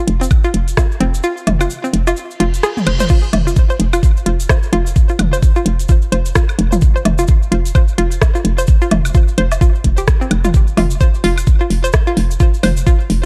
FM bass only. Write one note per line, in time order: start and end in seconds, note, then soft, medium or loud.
0.07 0.28 F1 loud
0.54 0.74 F1 medium
1.00 1.21 F1 loud
1.47 1.67 F1 loud
1.93 2.14 F1 loud
2.40 2.60 F1 loud
2.87 3.07 F1 medium
3.33 3.53 F1 medium
3.80 4.00 F1 loud
4.26 4.46 F1 medium
4.73 4.93 F1 loud
5.19 5.39 F1 loud
5.66 5.86 F1 loud
6.12 6.32 F1 medium
6.59 6.79 F1 loud
7.05 7.26 F1 loud
7.52 7.72 F1 loud
7.98 8.18 F1 medium
8.45 8.65 F1 loud
8.91 9.12 F1 loud
9.38 9.58 F1 loud
9.84 10.05 F1 medium
10.31 10.51 F1 loud
10.77 10.98 F1 loud
11.24 11.44 F1 medium
11.70 11.91 F1 medium
12.17 12.37 F1 loud
12.63 12.84 F1 loud
13.10 13.25 F1 loud